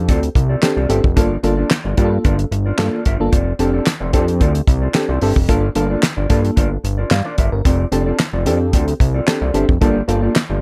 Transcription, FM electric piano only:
Already playing: C4 D4 G4 A4
0.62 C4 D4 G4 A4
0.89 C4 D4 G4 A4
1.16 A#3 D4 F4 A4
1.43 A#3 D4 F4 A4
1.97 A#3 D4 F4 G4
2.05 A4
2.78 A#3 D4 F4 A4
3.20 A#3 D4 F4 A4
3.59 C4 D4 G4 A4
4.13 C4 D4 G4 A4
4.94 C4 D4 G4 A4
5.22 C4 D4 G4 A4
5.49 A#3 D4 F4 A4
5.76 A#3 D4 F4 A4
6.30 A#3 D4 F4 A4
7.11 F5
7.25 D5
7.52 A#4
7.92 C4 D4 G4 A4
8.46 C4 D4 G4 A4
9.27 C4 D4 G4 A4
9.54 C4 D4 G4 A4
9.81 A#3 D4 F4 A4
10.08 A#3 D4 F4 A4

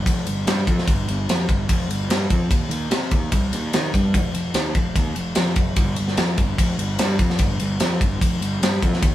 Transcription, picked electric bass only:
0.06 F1
0.27 G1
0.46 G2
0.67 F2
0.88 G1
1.08 G1
1.29 F2
1.49 G1
1.70 F1
1.89 G1
2.10 G2
2.31 F2
2.51 D#2
2.70 D#2
2.90 C3
3.12 D#2
3.32 C2
3.53 D#2
3.74 D#3
3.94 G2
4.15 F1
4.34 F1
4.55 D#2
4.75 F1
4.96 D#2
5.17 F1
5.37 F2
5.56 F#1
5.77 G1
5.98 G1
6.18 F2
6.38 G1
6.58 F1
6.79 G1
7.00 G2
7.20 F2
7.40 G1
7.60 G1
7.81 F2
8.01 G1
8.22 F1
8.41 G1
8.61 G2
8.83 F2
9.03 D#2

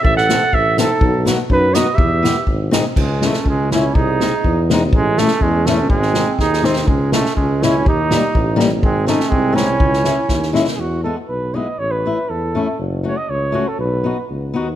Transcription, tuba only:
0.05 A1
0.53 A1
1.01 B1
1.49 F#2
1.98 E2
2.47 G#1
2.97 C#2
3.45 C#2
3.95 C2
4.44 E2
4.92 A1
5.41 E2
5.90 G#1
6.39 D#2
6.87 C#2
7.37 C#2
7.86 D#2
8.35 A1
8.82 G#1
9.32 C2
9.80 C#2
10.29 D#2
10.78 E2
11.29 B1
11.79 A1
12.30 E2
12.79 F#1
13.29 C#2
13.79 B1
14.30 C#2
14.56 D#2

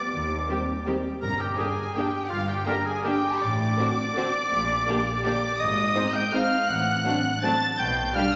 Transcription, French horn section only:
0.50 C4 G4
0.89 C4 G4
1.59 D4 G4
1.98 D4 G4
2.69 D4 G4
3.07 D4 G4
3.80 C4 F#4
4.16 C4 F#4
4.89 A#3 G4
5.24 A#3 G4
5.94 C4 D#4
6.33 C4 D#4
7.05 C4 D4
7.42 C4 D4
8.16 G3 D4

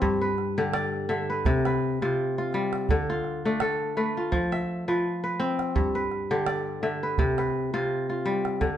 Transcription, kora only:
Already playing: A3 C4 B4
0.02 G2
0.21 B4
0.58 D3 G4
0.74 D5
1.09 D3 E5
1.30 B4
1.46 C3
1.66 B4
2.02 C3 F4
2.38 F4
2.54 G3
2.90 D3
3.10 F4
3.45 A3 D4
3.61 A4
3.97 A3 B4
4.17 F4
4.32 F3
4.52 E5
4.88 F3 B4
5.24 B4
5.40 C4
5.76 G2
5.95 B4
6.31 D3 G4
6.47 D5
6.83 D3 E5
7.03 B4
7.19 C3
7.39 B4
7.74 C3 F4
8.10 F4
8.26 G3
8.61 D3

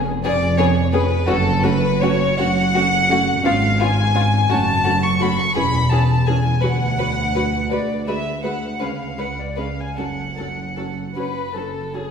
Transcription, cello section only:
Already playing: F2
0.23 F2
1.26 F#2
2.39 F#2
3.45 G#2
4.49 F#2
5.55 E2
6.62 D2
7.70 D2
8.80 C#2
9.97 F#2
11.17 F#2

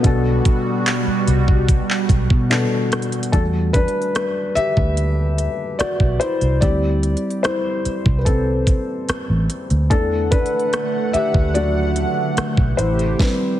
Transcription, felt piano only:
0.03 B2 B3 D4 F#4 A4
2.50 B2 B3 D4 F#4 A4
3.32 G3 A3 D4 F#4 A4
3.73 D4 B4
4.55 G4 E5
5.79 F#4 D5
6.20 E4 C5
6.61 G3 C4 E4 G4 D5
7.43 E4 C5
8.18 B4
8.25 C4 A4
9.90 E3 A3 D4 A4
10.31 D4 B4
11.13 G4 E5
11.54 F#3 A3 D4 F#4 D5
12.77 E4 C5
13.19 G3 C4 B4

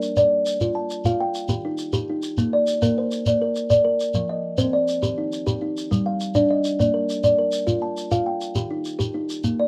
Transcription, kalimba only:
Already playing: A#4 D5
0.17 D5
0.61 F4
0.75 A5
1.06 F4 F5
1.21 G5
1.49 D#3 G4
1.65 D#4
1.93 G4
2.10 D#4
2.38 A#3
2.53 D5
2.82 A#3 A#4
2.98 C5
3.27 A#3 D5
3.42 A#4
3.70 D5
3.85 A#4
4.15 F3
4.29 D#5
4.58 C4 C5
4.73 D5
5.02 D#3 G4
5.18 D#4
5.47 G4
5.62 D#4
5.91 G3
6.06 F5
6.35 D4 D5
6.51 D#5
6.79 A#3 D5
6.94 A#4
7.24 D5
7.38 A#4
7.67 F4
7.82 A5
8.11 F4 F5
8.26 G5
8.56 D#3 G4
8.71 D#4
8.99 G4
9.14 D#4
9.44 A#3
9.60 D5

